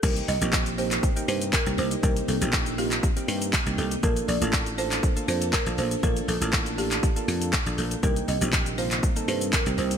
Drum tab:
CC |x---------------|----------------|----------------|----------------|
HH |-xox-xox-xox-xox|-xox-xox-xox-xox|-xox-xox-xox-xox|-xox-xox-xox-xox|
SH |xxxxxxxxxxxxxxxx|xxxxxxxxxxxxxxxx|xxxxxxxxxxxxxxxx|xxxxxxxxxxxxxxxx|
CP |----x--x----x---|----x--x----x---|----x--x----x---|----x--x----x---|
BD |o---o---o---o---|o---o---o---o---|o---o---o---o---|o---o---o---o---|

CC |----------------|
HH |-xox-xox-xox-xox|
SH |xxxxxxxxxxxxxxxx|
CP |----x--x----x---|
BD |o---o---o---o---|